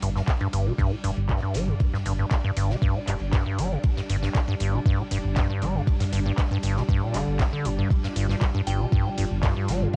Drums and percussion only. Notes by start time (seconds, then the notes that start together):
0.02 open hi-hat, ride
0.16 snare
0.28 kick, snare, clap, ride
0.41 ride
0.53 open hi-hat, ride
0.79 kick, ride
1.04 open hi-hat, ride
1.17 mid tom
1.30 kick, snare, clap, ride
1.54 snare, open hi-hat, ride
1.68 mid tom
1.80 kick, ride
1.94 snare, mid tom
2.06 open hi-hat, ride
2.31 kick, snare, clap, ride
2.57 open hi-hat, ride
2.70 snare
2.82 kick, ride
3.08 clap, open hi-hat, ride
3.33 kick, snare, clap, ride
3.58 open hi-hat, ride
3.83 kick, ride
3.96 snare
4.09 open hi-hat, ride
4.22 snare
4.34 kick, snare, clap, ride
4.47 ride
4.60 open hi-hat, ride
4.85 kick, ride
5.11 open hi-hat, ride
5.24 mid tom
5.36 kick, snare, clap, ride
5.62 snare, open hi-hat, ride
5.75 mid tom
5.87 kick, ride
6.00 snare, mid tom, open hi-hat
6.13 open hi-hat, ride
6.38 kick, snare, clap, ride
6.63 open hi-hat, ride
6.77 snare
6.89 kick, ride
7.14 clap, open hi-hat, ride
7.39 kick, snare, clap, ride
7.65 open hi-hat, ride
7.90 kick, ride
8.03 snare
8.16 open hi-hat, ride
8.30 snare
8.41 kick, snare, clap, ride
8.54 ride
8.67 open hi-hat, ride
8.92 kick, ride
9.18 open hi-hat, ride
9.31 mid tom
9.43 kick, snare, clap, ride
9.68 snare, open hi-hat, ride
9.82 mid tom